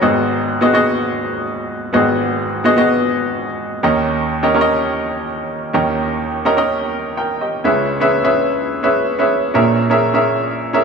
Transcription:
grand piano
Already playing: C#5 A#5
0.01 G#1 G#2 B3 F#4 G#4 D#5
0.61 B3 F#4 G#4 D#5
0.73 B3 F#4 G#4 D#5
1.93 G#1 G#2 B3 F#4 G#4 D#5
2.64 B3 F#4 G#4 D#5
2.76 B3 F#4 G#4 D#5
3.83 D#2 D#3 C#4 G4 A#4 D#5
4.43 C#4 G4 A#4 D#5
4.54 C#4 G4 A#4 C#5
4.61 D#5
5.73 D#2 D#3 C#4 G4 A#4 D#5
6.45 C#4 G4 A#4 D#5
6.57 C#4 G4 A#4 D#5
7.17 A#4 G5
7.41 G4 D#5
7.64 C#2 C#3 C#4 G#4 B4 E5
8.00 C#4 G#4 B4 E5
8.24 C#4 G#4 B4 E5
8.83 C#4 G#4 B4 E5
9.19 C#4 G#4 B4 E5
9.54 A#1 A#2 C#4 G#4 A#4 E5
9.90 C#4 G#4 A#4 E5
10.14 C#4 G#4 A#4 E5
10.73 C#4 G#4 A#4 E5

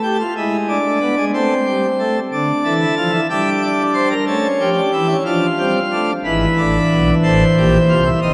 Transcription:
pipe organ
Already playing: A3
0.03 G4
0.20 F4
0.36 G#3 E4
0.69 D4
0.85 A3
1.01 B3
1.17 G#3
1.33 A3 C4
1.66 G3
1.99 A3
2.32 D3 D4
2.64 E3 A4
2.81 E4
2.97 F3 F4
3.13 E4
3.30 G3 D4 E5
3.62 D5
3.94 C5
4.11 A#4
4.27 A3 C#4 A4
4.60 F3 G4
4.77 D4
4.93 E3 E4
5.09 C#4
5.25 F3 D4 F4
5.58 G3 C4
5.92 A3 D4
6.25 G#1 G#2 E3 E4 B4
6.57 A1 A2 D4
6.91 B1 B2
7.23 A1 A2 A4 C5
7.57 A#1 A#2 G4
7.89 C2 C3 F4
8.06 E4
8.22 F1 F2 D#3 C4 D#5

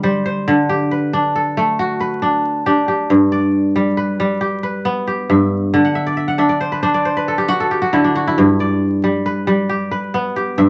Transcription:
kora
Already playing: G2 D3 E5
0.03 G3 C5
0.26 C5
0.48 D3
0.69 G4
0.91 B4
1.13 D4
1.35 A4
1.57 A3
1.79 F#4
2.00 B4
2.22 D4
2.66 D4 G4
2.88 G4
3.10 G2
3.32 D5
3.76 G3
3.97 B4
4.20 G3
4.41 G4
4.63 B4
4.85 B3
5.07 G4
5.29 G2 E5
5.74 D3
5.85 F#5
5.95 E5
6.07 D5
6.17 E5
6.28 F#5
6.38 D4 E5
6.49 D5
6.61 C5
6.72 B4
6.83 D4 C5
6.94 D5
7.05 C5
7.17 B4
7.28 A4
7.38 G4
7.49 F#4
7.60 A4
7.71 G4
7.82 F#4
7.93 D3 E4
8.04 D4
8.15 F#4
8.27 E4
8.38 G2
8.60 D5
9.04 G3
9.26 B4
9.47 G3
9.69 G4
9.91 B4
10.14 B3
10.36 G4
10.58 G2 E5

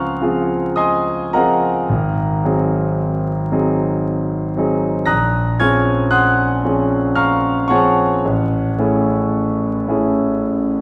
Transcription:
grand piano
Already playing: C#2 F3 C4 F4 G#4 F5 F#5 G#5 A#5 C6 C#6 D#6 F6 F#6 G#6
0.21 F3 C4 F4 G#4
0.76 D#5 G#5 C6 D#6
1.33 F3 C4 F4 G#4 A#4 D#5 F#5 A#5
1.89 G#1
2.44 F#3 C4 D#4 G#4
3.52 F#3 C4 D#4 G#4
4.57 F#3 C4 D#4 G#4
5.06 A#1 A#5 D#6 F#6 A#6
5.60 F3 C4 C#4 G#4 G#5 C#6 F6 G#6
6.11 F#5 C6 D#6 F#6
6.64 F3 C4 C#4 G#4
7.16 F5 A#5 C#6 F6
7.68 F3 C4 C#4 G#4 C#5 F#5 A5 C#6
8.25 A1
8.78 A3 C#4 E4 G#4
9.88 A3 C#4 E4 G#4

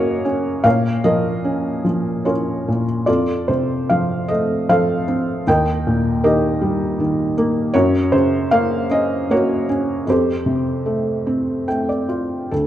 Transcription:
felt piano
Already playing: F#2 C#3 A#3 C#4 F#4 A#4 C#5 D#5 F5 F#5
0.25 C#4
0.64 A#2 A#4 C#5 F5
1.04 F3 A#4 D#5
1.44 C#4
1.85 F3
2.25 C#4 F4 A#4 C#5
2.68 A#2
3.06 F2 F4 A4 D5
3.48 C3 C5
3.90 F3 F5
4.28 A3 D#5
4.69 F3 A4 C5 F5
5.08 C4
5.47 D#2 A#4 D#5 G5
5.87 A#2
6.24 D#3 G4 A#4 D#5
6.61 G3
7.00 D#3
7.38 A#3
7.74 F#2 F#4 A#4 C#5
8.12 C#3 C5
8.51 A#3 F5
8.91 C#4 D#5
9.30 A#3 F#4 A#4 C#5
9.69 C#4
10.07 F2 G4 A4 C5
10.46 C3
10.86 A3
11.27 C4
11.68 A3 G5
11.89 D5
12.09 F4
12.51 D2 A4

